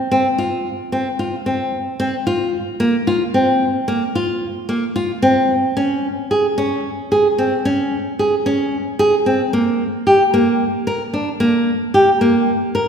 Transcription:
0.12 C4
0.38 F4
0.92 C4
1.19 F4
1.46 C4
2.00 C4
2.27 F4
2.80 A#3
3.07 F4
3.34 C4
3.88 A#3
4.15 F4
4.69 A#3
4.96 F4
5.22 C4
5.77 C#4
6.31 G#4
6.58 C#4
7.12 G#4
7.38 C4
7.65 C#4
8.19 G#4
8.46 C#4
8.99 G#4
9.26 C4
9.53 A#3
10.07 G4
10.34 A#3
10.87 A#4
11.13 D4
11.40 A#3
11.94 G4
12.21 A#3
12.75 A#4

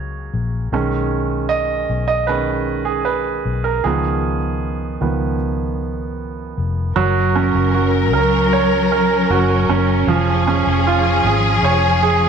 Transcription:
Already playing: C#2 C#5
0.34 A#1
0.72 B1 D#3 G#3 C#4
1.49 D#5
1.90 B1
2.08 D#5
2.27 D#3 G#3 C#4 B4
2.85 G#4
3.05 B4
3.45 B1
3.64 A#4
3.84 C#2 D#3 F3 B3 G#4
5.01 C#2 D#3 F3 B3
6.58 F1
6.95 F#1 F#3 C#4 A#4
7.36 C#4
7.55 F#1
7.75 F#4
8.13 C#2 A#4
8.53 C#5
8.92 A#4
9.30 F#1 F#4
9.69 F#1 C#4
10.07 F1 F3 G#4
10.47 C#4
10.67 F1
10.87 F4
11.25 G#1 G#4
11.63 F1 C#5
12.03 G#4

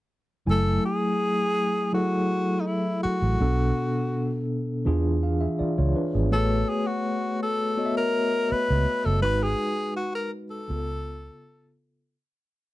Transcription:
0.46 F#1 F#3 A3 E4 G#5
0.50 A4
0.85 G#4
1.93 F#3 E4 F#4 G#4 A4
2.60 D#4
2.67 E4
3.03 F#4, muted fingered electric bass stroke
3.22 A1
3.40 B1 B2 B3 D4 A4
4.85 E2 E3 D4 F4 G#4
5.23 G#4 F5
5.41 G#4 E5
5.59 F4 D5, muted fingered electric bass stroke
5.78 C#2 F4 C#5
5.96 D4 B4
6.15 G#1 B3 G#4
6.31 A1 A3 F#4 A4 B4 C#5
6.69 G#4
6.87 F#4
7.43 A4
7.77 B3 F#4 C#5 D#5
7.86 E5
7.97 A#4
8.51 B4, muted fingered electric bass stroke
8.70 C#2
9.05 F#1 A4
9.21 G#1 G#3 D#4 F#4 B4
9.43 G#4
9.96 F#4
10.15 A#4
10.51 A4
10.68 C#2 C#3 B3 F4 G#4
10.76 A4

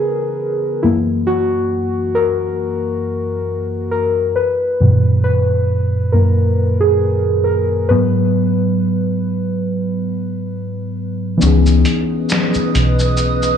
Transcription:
Already playing: C#3 E3 B3 G#4 A#4 B4
0.83 F#2 E3 A#3 E4
1.27 F#4
2.15 A#4
3.91 A#4
4.36 B4
4.80 F#2 A#2 D#3
5.24 B4
6.12 F#2 D#3 A#3 A#4
6.81 G#4
7.44 A#4
7.89 G#2 F#3 B3 B4
11.37 E3 B3 B4 D#5 D#6
11.41 C#2 C#4 D#4, shaker
11.46 G#4
11.66 shaker
11.85 closed hi-hat, shaker
12.29 finger snap, snare, shaker
12.54 muted fingered electric bass stroke, shaker
12.75 B1, closed hi-hat, shaker
12.99 shaker
13.17 shaker
13.43 shaker

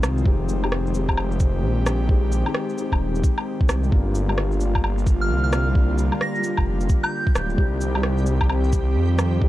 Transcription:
Already playing: D#3 G#3 C4 D#4 F4 G4
0.02 C2, cross-stick, cabasa, low woodblock, shaker
0.18 shaker
0.23 F1 G#3 C4 D#4 G4, kick
0.49 cabasa, shaker
0.61 G#3 C4 D#4 G4, low woodblock
0.72 cross-stick
0.87 shaker
0.91 G#3 C4, cabasa, shaker
0.96 D#4 G4
1.09 kick, low woodblock
1.17 low woodblock
1.31 shaker
1.40 kick, cabasa, shaker
1.62 A#1
1.86 cross-stick, cabasa, low woodblock, shaker
2.07 G#3 C4 D#4 G4, kick
2.32 cabasa, shaker
2.44 G#3 C4 D#4 G4, low woodblock
2.54 cross-stick
2.69 shaker
2.73 G#3 C4
2.78 D#4 G4, cabasa, shaker
2.92 D#1, kick, low woodblock
3.15 cabasa, shaker
3.24 kick, cabasa, shaker
3.38 low woodblock
3.61 kick
3.69 C2, cross-stick, cabasa, low woodblock, shaker
3.84 shaker
3.91 G1 D3 G3 A#3 D4 F4 G4, kick
4.15 cabasa, shaker
4.28 G3 A#3 D4, low woodblock
4.32 F4
4.38 cross-stick
4.52 shaker
4.57 G3 A#3, cabasa, shaker
4.63 D4 F4
4.75 kick, low woodblock
4.84 low woodblock
4.98 shaker
5.07 kick, cabasa, shaker
5.21 F6
5.29 C2
5.44 F6
5.53 cross-stick, cabasa, low woodblock, shaker
5.73 G3 A#3 D4, kick
5.77 F4
5.98 cabasa, shaker
6.10 G3 A#3 D4 F4, low woodblock
6.21 A#6, cross-stick
6.35 shaker
6.39 G3 A#3
6.44 D4 F4, cabasa, shaker
6.57 F1, kick, low woodblock
6.81 cabasa, shaker
6.89 kick, cabasa, shaker
7.03 G6, low woodblock
7.27 kick
7.35 D1, cross-stick, cabasa, low woodblock, shaker
7.50 shaker
7.56 C2 D#3 G3 C4 D#4 G4, kick
7.81 cabasa, shaker
7.94 G3 C4 D#4, low woodblock
7.98 G4
8.03 cross-stick
8.18 shaker
8.23 G3 C4, cabasa, shaker
8.28 D#4 G4
8.41 kick, low woodblock
8.50 low woodblock
8.64 shaker
8.73 kick, cabasa, shaker
8.96 F2
9.19 cross-stick, cabasa, low woodblock, shaker
9.40 G3 C4 D#4 G4, kick

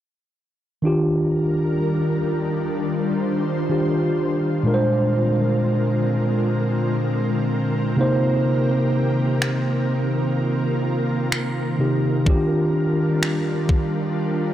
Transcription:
0.82 D#3 G3 D4 F4 A#4
0.86 G4
2.74 C5
3.69 D#3 D4 F4 G4
4.63 A#2 D3 G#3 C4 D4 A#4
4.67 A#4
4.74 C5
7.97 C3 D#3 A#3 D#4 G4
8.01 C5
9.42 finger snap
9.88 F4
11.32 finger snap
11.79 C3 A#3 D#4 G4
12.25 D#3 G3 D4 F4, kick
12.29 G4
13.23 finger snap
13.69 kick
14.16 C5

